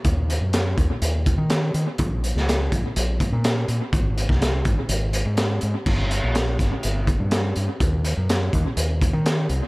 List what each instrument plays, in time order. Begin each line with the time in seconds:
0.05 fingered electric bass D#2, kick, closed hi-hat
0.30 closed hi-hat
0.41 fingered electric bass F#2
0.53 snare, closed hi-hat
0.78 fingered electric bass D#2, kick, closed hi-hat
1.02 fingered electric bass D#2, closed hi-hat
1.26 kick, closed hi-hat
1.38 fingered electric bass D#3
1.50 snare, closed hi-hat
1.74 fingered electric bass D#3, closed hi-hat
1.98 fingered electric bass A#1, kick, closed hi-hat
2.24 closed hi-hat
2.35 fingered electric bass C#2, snare
2.49 snare, closed hi-hat
2.72 fingered electric bass A#1, kick, closed hi-hat
2.96 fingered electric bass A#1, closed hi-hat
3.20 kick, closed hi-hat
3.32 fingered electric bass A#2
3.44 snare, closed hi-hat
3.68 fingered electric bass A#2, closed hi-hat
3.92 fingered electric bass G#1, kick, closed hi-hat
4.18 closed hi-hat
4.29 fingered electric bass C2, kick, snare
4.42 snare, closed hi-hat
4.65 fingered electric bass G#1, kick, closed hi-hat
4.89 fingered electric bass G#1, closed hi-hat
5.13 closed hi-hat
5.26 fingered electric bass G#2
5.37 snare, closed hi-hat
5.61 fingered electric bass G#2, closed hi-hat
5.86 fingered electric bass G1, kick, crash
6.11 closed hi-hat
6.24 fingered electric bass A#1
6.35 snare, closed hi-hat
6.59 fingered electric bass G1, kick, snare, closed hi-hat
6.83 fingered electric bass G1, closed hi-hat
7.07 kick, closed hi-hat
7.20 fingered electric bass G2
7.31 snare, closed hi-hat
7.56 fingered electric bass G2, closed hi-hat
7.80 fingered electric bass D#2, kick, closed hi-hat
8.05 closed hi-hat
8.17 fingered electric bass F#2
8.29 snare, closed hi-hat
8.53 fingered electric bass D#2, kick, closed hi-hat
8.77 fingered electric bass D#2, closed hi-hat
9.02 kick, closed hi-hat
9.13 fingered electric bass D#3
9.26 snare, closed hi-hat
9.49 fingered electric bass C2, closed hi-hat